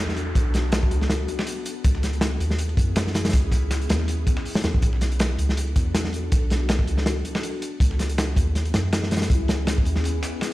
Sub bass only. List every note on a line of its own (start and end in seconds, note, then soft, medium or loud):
0.00 0.34 E2 medium
0.35 0.90 B1 loud
0.91 1.27 C#2 medium
1.85 2.39 C#2 loud
2.40 2.76 D#2 medium
2.77 3.32 F#2 medium
3.33 3.88 C#2 loud
3.90 4.25 D#2 medium
4.64 4.81 E2 medium
4.83 5.37 B1 loud
5.38 5.74 C#2 medium
5.76 6.30 E2 medium
6.32 6.86 B1 loud
6.88 7.24 C#2 medium
7.80 8.35 C#2 loud
8.36 8.72 D#2 medium
8.74 9.29 F#2 loud
9.30 9.84 C#2 loud
9.86 10.22 D#2 medium